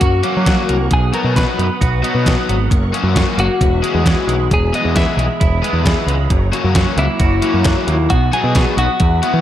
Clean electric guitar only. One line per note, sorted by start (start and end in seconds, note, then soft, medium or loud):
0.00 0.87 F#4 medium
0.93 1.13 G#4 medium
1.14 1.36 A#4 loud
1.37 2.00 B4 medium
3.40 4.53 F#4 medium
4.54 4.73 G#4 medium
4.75 4.96 D#5 medium
4.97 5.60 E5 medium
6.99 8.14 E4 medium
8.10 8.33 F#4 medium
8.33 8.75 G#4 loud
8.79 9.41 F#4 medium